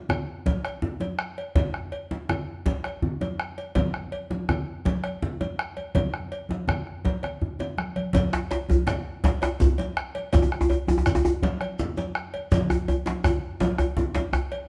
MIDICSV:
0, 0, Header, 1, 5, 480
1, 0, Start_track
1, 0, Tempo, 365186
1, 2052, Time_signature, 12, 3, 24, 8
1, 19297, End_track
2, 0, Start_track
2, 0, Title_t, "Bombo"
2, 130, Note_on_c, 9, 37, 99
2, 262, Note_off_c, 9, 37, 0
2, 614, Note_on_c, 9, 43, 93
2, 746, Note_off_c, 9, 43, 0
2, 849, Note_on_c, 9, 37, 75
2, 980, Note_off_c, 9, 37, 0
2, 1559, Note_on_c, 9, 37, 90
2, 1691, Note_off_c, 9, 37, 0
2, 2041, Note_on_c, 9, 43, 101
2, 2172, Note_off_c, 9, 43, 0
2, 2288, Note_on_c, 9, 37, 72
2, 2419, Note_off_c, 9, 37, 0
2, 3017, Note_on_c, 9, 37, 90
2, 3148, Note_off_c, 9, 37, 0
2, 3492, Note_on_c, 9, 43, 91
2, 3624, Note_off_c, 9, 43, 0
2, 3736, Note_on_c, 9, 37, 68
2, 3867, Note_off_c, 9, 37, 0
2, 4463, Note_on_c, 9, 37, 90
2, 4594, Note_off_c, 9, 37, 0
2, 4938, Note_on_c, 9, 43, 94
2, 5069, Note_off_c, 9, 43, 0
2, 5178, Note_on_c, 9, 37, 71
2, 5310, Note_off_c, 9, 37, 0
2, 5900, Note_on_c, 9, 37, 86
2, 6032, Note_off_c, 9, 37, 0
2, 6384, Note_on_c, 9, 43, 88
2, 6515, Note_off_c, 9, 43, 0
2, 6619, Note_on_c, 9, 37, 67
2, 6751, Note_off_c, 9, 37, 0
2, 7350, Note_on_c, 9, 37, 86
2, 7482, Note_off_c, 9, 37, 0
2, 7823, Note_on_c, 9, 43, 99
2, 7955, Note_off_c, 9, 43, 0
2, 8066, Note_on_c, 9, 37, 78
2, 8197, Note_off_c, 9, 37, 0
2, 8550, Note_on_c, 9, 37, 28
2, 8681, Note_off_c, 9, 37, 0
2, 8790, Note_on_c, 9, 37, 92
2, 8922, Note_off_c, 9, 37, 0
2, 9030, Note_on_c, 9, 37, 30
2, 9162, Note_off_c, 9, 37, 0
2, 9271, Note_on_c, 9, 43, 86
2, 9402, Note_off_c, 9, 43, 0
2, 9517, Note_on_c, 9, 37, 66
2, 9649, Note_off_c, 9, 37, 0
2, 10232, Note_on_c, 9, 37, 79
2, 10363, Note_off_c, 9, 37, 0
2, 10713, Note_on_c, 9, 43, 115
2, 10844, Note_off_c, 9, 43, 0
2, 10956, Note_on_c, 9, 37, 92
2, 11087, Note_off_c, 9, 37, 0
2, 11666, Note_on_c, 9, 37, 102
2, 11798, Note_off_c, 9, 37, 0
2, 12141, Note_on_c, 9, 43, 103
2, 12273, Note_off_c, 9, 43, 0
2, 12394, Note_on_c, 9, 37, 84
2, 12525, Note_off_c, 9, 37, 0
2, 13104, Note_on_c, 9, 37, 105
2, 13235, Note_off_c, 9, 37, 0
2, 13588, Note_on_c, 9, 43, 101
2, 13719, Note_off_c, 9, 43, 0
2, 13829, Note_on_c, 9, 37, 80
2, 13960, Note_off_c, 9, 37, 0
2, 14536, Note_on_c, 9, 37, 101
2, 14668, Note_off_c, 9, 37, 0
2, 15014, Note_on_c, 9, 43, 97
2, 15146, Note_off_c, 9, 43, 0
2, 15256, Note_on_c, 9, 37, 70
2, 15387, Note_off_c, 9, 37, 0
2, 15973, Note_on_c, 9, 37, 97
2, 16104, Note_off_c, 9, 37, 0
2, 16450, Note_on_c, 9, 43, 96
2, 16582, Note_off_c, 9, 43, 0
2, 16696, Note_on_c, 9, 37, 76
2, 16827, Note_off_c, 9, 37, 0
2, 17408, Note_on_c, 9, 37, 101
2, 17540, Note_off_c, 9, 37, 0
2, 17885, Note_on_c, 9, 43, 91
2, 18016, Note_off_c, 9, 43, 0
2, 18118, Note_on_c, 9, 37, 78
2, 18249, Note_off_c, 9, 37, 0
2, 18840, Note_on_c, 9, 37, 92
2, 18972, Note_off_c, 9, 37, 0
2, 19297, End_track
3, 0, Start_track
3, 0, Title_t, "Djembe"
3, 128, Note_on_c, 9, 64, 69
3, 259, Note_off_c, 9, 64, 0
3, 609, Note_on_c, 9, 62, 65
3, 740, Note_off_c, 9, 62, 0
3, 854, Note_on_c, 9, 62, 21
3, 986, Note_off_c, 9, 62, 0
3, 1082, Note_on_c, 9, 64, 68
3, 1213, Note_off_c, 9, 64, 0
3, 1322, Note_on_c, 9, 62, 59
3, 1322, Note_on_c, 9, 63, 54
3, 1454, Note_off_c, 9, 62, 0
3, 1454, Note_off_c, 9, 63, 0
3, 2046, Note_on_c, 9, 62, 71
3, 2046, Note_on_c, 9, 64, 75
3, 2177, Note_off_c, 9, 62, 0
3, 2177, Note_off_c, 9, 64, 0
3, 2530, Note_on_c, 9, 62, 24
3, 2662, Note_off_c, 9, 62, 0
3, 2774, Note_on_c, 9, 62, 62
3, 2774, Note_on_c, 9, 63, 59
3, 2906, Note_off_c, 9, 62, 0
3, 2906, Note_off_c, 9, 63, 0
3, 3023, Note_on_c, 9, 64, 69
3, 3154, Note_off_c, 9, 64, 0
3, 3499, Note_on_c, 9, 62, 68
3, 3630, Note_off_c, 9, 62, 0
3, 3738, Note_on_c, 9, 62, 20
3, 3870, Note_off_c, 9, 62, 0
3, 3974, Note_on_c, 9, 64, 68
3, 4106, Note_off_c, 9, 64, 0
3, 4224, Note_on_c, 9, 62, 53
3, 4224, Note_on_c, 9, 63, 56
3, 4355, Note_off_c, 9, 62, 0
3, 4355, Note_off_c, 9, 63, 0
3, 4706, Note_on_c, 9, 62, 23
3, 4838, Note_off_c, 9, 62, 0
3, 4935, Note_on_c, 9, 62, 72
3, 4935, Note_on_c, 9, 64, 61
3, 5066, Note_off_c, 9, 62, 0
3, 5066, Note_off_c, 9, 64, 0
3, 5418, Note_on_c, 9, 62, 22
3, 5550, Note_off_c, 9, 62, 0
3, 5661, Note_on_c, 9, 62, 57
3, 5661, Note_on_c, 9, 63, 55
3, 5793, Note_off_c, 9, 62, 0
3, 5793, Note_off_c, 9, 63, 0
3, 5902, Note_on_c, 9, 64, 67
3, 6033, Note_off_c, 9, 64, 0
3, 6387, Note_on_c, 9, 62, 67
3, 6518, Note_off_c, 9, 62, 0
3, 6625, Note_on_c, 9, 62, 19
3, 6757, Note_off_c, 9, 62, 0
3, 6868, Note_on_c, 9, 64, 65
3, 7000, Note_off_c, 9, 64, 0
3, 7107, Note_on_c, 9, 62, 55
3, 7107, Note_on_c, 9, 63, 51
3, 7239, Note_off_c, 9, 62, 0
3, 7239, Note_off_c, 9, 63, 0
3, 7587, Note_on_c, 9, 62, 21
3, 7718, Note_off_c, 9, 62, 0
3, 7829, Note_on_c, 9, 62, 62
3, 7829, Note_on_c, 9, 64, 73
3, 7961, Note_off_c, 9, 62, 0
3, 7961, Note_off_c, 9, 64, 0
3, 8064, Note_on_c, 9, 62, 23
3, 8196, Note_off_c, 9, 62, 0
3, 8552, Note_on_c, 9, 62, 58
3, 8552, Note_on_c, 9, 63, 57
3, 8684, Note_off_c, 9, 62, 0
3, 8684, Note_off_c, 9, 63, 0
3, 8791, Note_on_c, 9, 62, 23
3, 8791, Note_on_c, 9, 64, 73
3, 8923, Note_off_c, 9, 62, 0
3, 8923, Note_off_c, 9, 64, 0
3, 9271, Note_on_c, 9, 62, 65
3, 9402, Note_off_c, 9, 62, 0
3, 9510, Note_on_c, 9, 62, 21
3, 9642, Note_off_c, 9, 62, 0
3, 9748, Note_on_c, 9, 62, 22
3, 9748, Note_on_c, 9, 64, 74
3, 9880, Note_off_c, 9, 62, 0
3, 9880, Note_off_c, 9, 64, 0
3, 9994, Note_on_c, 9, 62, 57
3, 9994, Note_on_c, 9, 63, 60
3, 10125, Note_off_c, 9, 62, 0
3, 10125, Note_off_c, 9, 63, 0
3, 10707, Note_on_c, 9, 62, 72
3, 10707, Note_on_c, 9, 64, 73
3, 10839, Note_off_c, 9, 62, 0
3, 10839, Note_off_c, 9, 64, 0
3, 10950, Note_on_c, 9, 62, 78
3, 11082, Note_off_c, 9, 62, 0
3, 11186, Note_on_c, 9, 62, 24
3, 11190, Note_off_c, 9, 62, 0
3, 11190, Note_on_c, 9, 62, 81
3, 11322, Note_off_c, 9, 62, 0
3, 11429, Note_on_c, 9, 62, 58
3, 11429, Note_on_c, 9, 63, 56
3, 11439, Note_on_c, 9, 64, 76
3, 11561, Note_off_c, 9, 62, 0
3, 11561, Note_off_c, 9, 63, 0
3, 11571, Note_off_c, 9, 64, 0
3, 11660, Note_on_c, 9, 64, 73
3, 11792, Note_off_c, 9, 64, 0
3, 12146, Note_on_c, 9, 62, 72
3, 12155, Note_off_c, 9, 62, 0
3, 12155, Note_on_c, 9, 62, 82
3, 12286, Note_off_c, 9, 62, 0
3, 12390, Note_on_c, 9, 62, 81
3, 12522, Note_off_c, 9, 62, 0
3, 12628, Note_on_c, 9, 64, 73
3, 12634, Note_off_c, 9, 64, 0
3, 12634, Note_on_c, 9, 64, 79
3, 12766, Note_off_c, 9, 64, 0
3, 12872, Note_on_c, 9, 62, 58
3, 12872, Note_on_c, 9, 63, 57
3, 13003, Note_off_c, 9, 62, 0
3, 13003, Note_off_c, 9, 63, 0
3, 13355, Note_on_c, 9, 62, 21
3, 13486, Note_off_c, 9, 62, 0
3, 13584, Note_on_c, 9, 63, 107
3, 13594, Note_on_c, 9, 62, 71
3, 13594, Note_on_c, 9, 64, 78
3, 13698, Note_off_c, 9, 63, 0
3, 13698, Note_on_c, 9, 63, 76
3, 13726, Note_off_c, 9, 62, 0
3, 13726, Note_off_c, 9, 64, 0
3, 13830, Note_off_c, 9, 63, 0
3, 13942, Note_on_c, 9, 63, 94
3, 14066, Note_off_c, 9, 63, 0
3, 14066, Note_on_c, 9, 63, 82
3, 14077, Note_on_c, 9, 62, 27
3, 14197, Note_off_c, 9, 63, 0
3, 14208, Note_off_c, 9, 62, 0
3, 14304, Note_on_c, 9, 63, 92
3, 14309, Note_off_c, 9, 63, 0
3, 14309, Note_on_c, 9, 62, 65
3, 14309, Note_on_c, 9, 63, 62
3, 14427, Note_off_c, 9, 63, 0
3, 14427, Note_on_c, 9, 63, 82
3, 14441, Note_off_c, 9, 62, 0
3, 14548, Note_on_c, 9, 64, 81
3, 14559, Note_off_c, 9, 63, 0
3, 14656, Note_on_c, 9, 63, 104
3, 14680, Note_off_c, 9, 64, 0
3, 14785, Note_off_c, 9, 63, 0
3, 14785, Note_on_c, 9, 63, 90
3, 14916, Note_off_c, 9, 63, 0
3, 15027, Note_on_c, 9, 62, 80
3, 15159, Note_off_c, 9, 62, 0
3, 15263, Note_on_c, 9, 62, 21
3, 15394, Note_off_c, 9, 62, 0
3, 15503, Note_on_c, 9, 64, 76
3, 15634, Note_off_c, 9, 64, 0
3, 15742, Note_on_c, 9, 62, 62
3, 15742, Note_on_c, 9, 63, 64
3, 15873, Note_off_c, 9, 62, 0
3, 15873, Note_off_c, 9, 63, 0
3, 16221, Note_on_c, 9, 62, 27
3, 16352, Note_off_c, 9, 62, 0
3, 16453, Note_on_c, 9, 62, 81
3, 16453, Note_on_c, 9, 64, 81
3, 16458, Note_on_c, 9, 63, 87
3, 16584, Note_off_c, 9, 62, 0
3, 16584, Note_off_c, 9, 64, 0
3, 16590, Note_off_c, 9, 63, 0
3, 16692, Note_on_c, 9, 63, 85
3, 16823, Note_off_c, 9, 63, 0
3, 16934, Note_on_c, 9, 63, 83
3, 17065, Note_off_c, 9, 63, 0
3, 17165, Note_on_c, 9, 62, 70
3, 17165, Note_on_c, 9, 63, 66
3, 17180, Note_off_c, 9, 62, 0
3, 17180, Note_on_c, 9, 62, 73
3, 17296, Note_off_c, 9, 63, 0
3, 17312, Note_off_c, 9, 62, 0
3, 17403, Note_on_c, 9, 64, 81
3, 17417, Note_on_c, 9, 63, 87
3, 17535, Note_off_c, 9, 64, 0
3, 17549, Note_off_c, 9, 63, 0
3, 17881, Note_on_c, 9, 62, 80
3, 17891, Note_on_c, 9, 63, 76
3, 18012, Note_off_c, 9, 62, 0
3, 18023, Note_off_c, 9, 63, 0
3, 18120, Note_on_c, 9, 63, 85
3, 18251, Note_off_c, 9, 63, 0
3, 18359, Note_on_c, 9, 64, 79
3, 18361, Note_on_c, 9, 63, 70
3, 18490, Note_off_c, 9, 64, 0
3, 18492, Note_off_c, 9, 63, 0
3, 18593, Note_on_c, 9, 62, 81
3, 18605, Note_off_c, 9, 62, 0
3, 18605, Note_on_c, 9, 62, 62
3, 18605, Note_on_c, 9, 63, 66
3, 18736, Note_off_c, 9, 62, 0
3, 18736, Note_off_c, 9, 63, 0
3, 18834, Note_on_c, 9, 63, 83
3, 18966, Note_off_c, 9, 63, 0
3, 19081, Note_on_c, 9, 62, 25
3, 19212, Note_off_c, 9, 62, 0
3, 19297, End_track
4, 0, Start_track
4, 0, Title_t, "Shekere"
4, 10706, Note_on_c, 9, 82, 52
4, 10838, Note_off_c, 9, 82, 0
4, 11671, Note_on_c, 9, 82, 50
4, 11803, Note_off_c, 9, 82, 0
4, 12625, Note_on_c, 9, 82, 63
4, 12757, Note_off_c, 9, 82, 0
4, 12870, Note_on_c, 9, 82, 21
4, 13001, Note_off_c, 9, 82, 0
4, 13582, Note_on_c, 9, 82, 73
4, 13714, Note_off_c, 9, 82, 0
4, 14539, Note_on_c, 9, 82, 63
4, 14671, Note_off_c, 9, 82, 0
4, 15498, Note_on_c, 9, 82, 69
4, 15629, Note_off_c, 9, 82, 0
4, 15736, Note_on_c, 9, 82, 22
4, 15867, Note_off_c, 9, 82, 0
4, 16453, Note_on_c, 9, 82, 65
4, 16585, Note_off_c, 9, 82, 0
4, 17409, Note_on_c, 9, 82, 59
4, 17540, Note_off_c, 9, 82, 0
4, 18605, Note_on_c, 9, 82, 19
4, 18736, Note_off_c, 9, 82, 0
4, 19297, End_track
5, 0, Start_track
5, 0, Title_t, "Drums"
5, 120, Note_on_c, 9, 63, 20
5, 120, Note_on_c, 9, 64, 68
5, 131, Note_on_c, 9, 56, 43
5, 252, Note_off_c, 9, 63, 0
5, 252, Note_off_c, 9, 64, 0
5, 262, Note_off_c, 9, 56, 0
5, 602, Note_on_c, 9, 63, 68
5, 611, Note_on_c, 9, 56, 46
5, 734, Note_off_c, 9, 63, 0
5, 742, Note_off_c, 9, 56, 0
5, 857, Note_on_c, 9, 56, 48
5, 988, Note_off_c, 9, 56, 0
5, 1080, Note_on_c, 9, 64, 56
5, 1212, Note_off_c, 9, 64, 0
5, 1314, Note_on_c, 9, 63, 53
5, 1325, Note_on_c, 9, 56, 45
5, 1446, Note_off_c, 9, 63, 0
5, 1457, Note_off_c, 9, 56, 0
5, 1802, Note_on_c, 9, 63, 20
5, 1813, Note_on_c, 9, 56, 43
5, 1934, Note_off_c, 9, 63, 0
5, 1944, Note_off_c, 9, 56, 0
5, 2045, Note_on_c, 9, 56, 54
5, 2047, Note_on_c, 9, 63, 66
5, 2047, Note_on_c, 9, 64, 69
5, 2176, Note_off_c, 9, 56, 0
5, 2178, Note_off_c, 9, 63, 0
5, 2178, Note_off_c, 9, 64, 0
5, 2525, Note_on_c, 9, 56, 46
5, 2657, Note_off_c, 9, 56, 0
5, 2773, Note_on_c, 9, 63, 50
5, 2904, Note_off_c, 9, 63, 0
5, 3012, Note_on_c, 9, 63, 21
5, 3012, Note_on_c, 9, 64, 67
5, 3014, Note_on_c, 9, 56, 44
5, 3144, Note_off_c, 9, 63, 0
5, 3144, Note_off_c, 9, 64, 0
5, 3145, Note_off_c, 9, 56, 0
5, 3492, Note_on_c, 9, 63, 68
5, 3498, Note_on_c, 9, 56, 46
5, 3623, Note_off_c, 9, 63, 0
5, 3629, Note_off_c, 9, 56, 0
5, 3746, Note_on_c, 9, 56, 46
5, 3878, Note_off_c, 9, 56, 0
5, 3975, Note_on_c, 9, 64, 66
5, 4107, Note_off_c, 9, 64, 0
5, 4218, Note_on_c, 9, 63, 56
5, 4224, Note_on_c, 9, 56, 48
5, 4349, Note_off_c, 9, 63, 0
5, 4356, Note_off_c, 9, 56, 0
5, 4701, Note_on_c, 9, 63, 21
5, 4704, Note_on_c, 9, 56, 43
5, 4833, Note_off_c, 9, 63, 0
5, 4836, Note_off_c, 9, 56, 0
5, 4932, Note_on_c, 9, 56, 60
5, 4946, Note_on_c, 9, 63, 73
5, 4946, Note_on_c, 9, 64, 74
5, 5063, Note_off_c, 9, 56, 0
5, 5077, Note_off_c, 9, 63, 0
5, 5077, Note_off_c, 9, 64, 0
5, 5418, Note_on_c, 9, 56, 47
5, 5549, Note_off_c, 9, 56, 0
5, 5657, Note_on_c, 9, 63, 56
5, 5788, Note_off_c, 9, 63, 0
5, 5899, Note_on_c, 9, 63, 23
5, 5899, Note_on_c, 9, 64, 75
5, 5904, Note_on_c, 9, 56, 46
5, 6030, Note_off_c, 9, 63, 0
5, 6030, Note_off_c, 9, 64, 0
5, 6035, Note_off_c, 9, 56, 0
5, 6378, Note_on_c, 9, 63, 70
5, 6381, Note_on_c, 9, 56, 45
5, 6510, Note_off_c, 9, 63, 0
5, 6513, Note_off_c, 9, 56, 0
5, 6621, Note_on_c, 9, 56, 50
5, 6752, Note_off_c, 9, 56, 0
5, 6867, Note_on_c, 9, 64, 71
5, 6999, Note_off_c, 9, 64, 0
5, 7108, Note_on_c, 9, 56, 46
5, 7110, Note_on_c, 9, 63, 60
5, 7240, Note_off_c, 9, 56, 0
5, 7241, Note_off_c, 9, 63, 0
5, 7581, Note_on_c, 9, 56, 46
5, 7586, Note_on_c, 9, 63, 23
5, 7712, Note_off_c, 9, 56, 0
5, 7718, Note_off_c, 9, 63, 0
5, 7817, Note_on_c, 9, 63, 81
5, 7817, Note_on_c, 9, 64, 78
5, 7823, Note_on_c, 9, 56, 67
5, 7948, Note_off_c, 9, 63, 0
5, 7948, Note_off_c, 9, 64, 0
5, 7954, Note_off_c, 9, 56, 0
5, 8061, Note_on_c, 9, 63, 22
5, 8193, Note_off_c, 9, 63, 0
5, 8305, Note_on_c, 9, 56, 50
5, 8436, Note_off_c, 9, 56, 0
5, 8531, Note_on_c, 9, 63, 58
5, 8662, Note_off_c, 9, 63, 0
5, 8775, Note_on_c, 9, 64, 71
5, 8785, Note_on_c, 9, 56, 46
5, 8906, Note_off_c, 9, 64, 0
5, 8916, Note_off_c, 9, 56, 0
5, 9261, Note_on_c, 9, 63, 73
5, 9268, Note_on_c, 9, 56, 44
5, 9393, Note_off_c, 9, 63, 0
5, 9399, Note_off_c, 9, 56, 0
5, 9503, Note_on_c, 9, 56, 49
5, 9506, Note_on_c, 9, 64, 41
5, 9635, Note_off_c, 9, 56, 0
5, 9637, Note_off_c, 9, 64, 0
5, 9745, Note_on_c, 9, 64, 38
5, 9876, Note_off_c, 9, 64, 0
5, 9980, Note_on_c, 9, 64, 48
5, 9990, Note_on_c, 9, 56, 51
5, 10111, Note_off_c, 9, 64, 0
5, 10121, Note_off_c, 9, 56, 0
5, 10222, Note_on_c, 9, 63, 55
5, 10354, Note_off_c, 9, 63, 0
5, 10463, Note_on_c, 9, 63, 55
5, 10464, Note_on_c, 9, 56, 51
5, 10594, Note_off_c, 9, 63, 0
5, 10595, Note_off_c, 9, 56, 0
5, 10688, Note_on_c, 9, 63, 81
5, 10688, Note_on_c, 9, 64, 76
5, 10707, Note_on_c, 9, 56, 67
5, 10820, Note_off_c, 9, 63, 0
5, 10820, Note_off_c, 9, 64, 0
5, 10839, Note_off_c, 9, 56, 0
5, 11182, Note_on_c, 9, 56, 56
5, 11313, Note_off_c, 9, 56, 0
5, 11417, Note_on_c, 9, 63, 60
5, 11549, Note_off_c, 9, 63, 0
5, 11655, Note_on_c, 9, 63, 24
5, 11655, Note_on_c, 9, 64, 81
5, 11669, Note_on_c, 9, 56, 49
5, 11786, Note_off_c, 9, 63, 0
5, 11786, Note_off_c, 9, 64, 0
5, 11800, Note_off_c, 9, 56, 0
5, 12142, Note_on_c, 9, 63, 76
5, 12145, Note_on_c, 9, 56, 50
5, 12273, Note_off_c, 9, 63, 0
5, 12277, Note_off_c, 9, 56, 0
5, 12380, Note_on_c, 9, 56, 53
5, 12511, Note_off_c, 9, 56, 0
5, 12619, Note_on_c, 9, 64, 73
5, 12751, Note_off_c, 9, 64, 0
5, 12855, Note_on_c, 9, 63, 57
5, 12857, Note_on_c, 9, 56, 52
5, 12986, Note_off_c, 9, 63, 0
5, 12989, Note_off_c, 9, 56, 0
5, 13340, Note_on_c, 9, 56, 55
5, 13345, Note_on_c, 9, 63, 25
5, 13472, Note_off_c, 9, 56, 0
5, 13476, Note_off_c, 9, 63, 0
5, 13573, Note_on_c, 9, 56, 69
5, 13578, Note_on_c, 9, 63, 77
5, 13578, Note_on_c, 9, 64, 85
5, 13704, Note_off_c, 9, 56, 0
5, 13709, Note_off_c, 9, 63, 0
5, 13709, Note_off_c, 9, 64, 0
5, 14059, Note_on_c, 9, 56, 49
5, 14190, Note_off_c, 9, 56, 0
5, 14294, Note_on_c, 9, 63, 61
5, 14425, Note_off_c, 9, 63, 0
5, 14540, Note_on_c, 9, 56, 49
5, 14543, Note_on_c, 9, 63, 25
5, 14543, Note_on_c, 9, 64, 71
5, 14672, Note_off_c, 9, 56, 0
5, 14674, Note_off_c, 9, 63, 0
5, 14674, Note_off_c, 9, 64, 0
5, 15020, Note_on_c, 9, 56, 50
5, 15025, Note_on_c, 9, 63, 70
5, 15152, Note_off_c, 9, 56, 0
5, 15157, Note_off_c, 9, 63, 0
5, 15263, Note_on_c, 9, 56, 52
5, 15394, Note_off_c, 9, 56, 0
5, 15503, Note_on_c, 9, 64, 72
5, 15634, Note_off_c, 9, 64, 0
5, 15736, Note_on_c, 9, 63, 54
5, 15739, Note_on_c, 9, 56, 48
5, 15867, Note_off_c, 9, 63, 0
5, 15870, Note_off_c, 9, 56, 0
5, 16216, Note_on_c, 9, 56, 51
5, 16225, Note_on_c, 9, 63, 21
5, 16347, Note_off_c, 9, 56, 0
5, 16357, Note_off_c, 9, 63, 0
5, 16454, Note_on_c, 9, 56, 64
5, 16456, Note_on_c, 9, 63, 74
5, 16456, Note_on_c, 9, 64, 73
5, 16586, Note_off_c, 9, 56, 0
5, 16588, Note_off_c, 9, 63, 0
5, 16588, Note_off_c, 9, 64, 0
5, 16933, Note_on_c, 9, 56, 47
5, 17064, Note_off_c, 9, 56, 0
5, 17175, Note_on_c, 9, 63, 55
5, 17306, Note_off_c, 9, 63, 0
5, 17409, Note_on_c, 9, 56, 49
5, 17417, Note_on_c, 9, 63, 24
5, 17417, Note_on_c, 9, 64, 66
5, 17540, Note_off_c, 9, 56, 0
5, 17548, Note_off_c, 9, 63, 0
5, 17548, Note_off_c, 9, 64, 0
5, 17893, Note_on_c, 9, 56, 46
5, 17896, Note_on_c, 9, 63, 76
5, 18024, Note_off_c, 9, 56, 0
5, 18028, Note_off_c, 9, 63, 0
5, 18125, Note_on_c, 9, 56, 49
5, 18256, Note_off_c, 9, 56, 0
5, 18358, Note_on_c, 9, 64, 70
5, 18489, Note_off_c, 9, 64, 0
5, 18602, Note_on_c, 9, 63, 58
5, 18606, Note_on_c, 9, 56, 50
5, 18733, Note_off_c, 9, 63, 0
5, 18737, Note_off_c, 9, 56, 0
5, 19076, Note_on_c, 9, 63, 25
5, 19081, Note_on_c, 9, 56, 53
5, 19207, Note_off_c, 9, 63, 0
5, 19213, Note_off_c, 9, 56, 0
5, 19297, End_track
0, 0, End_of_file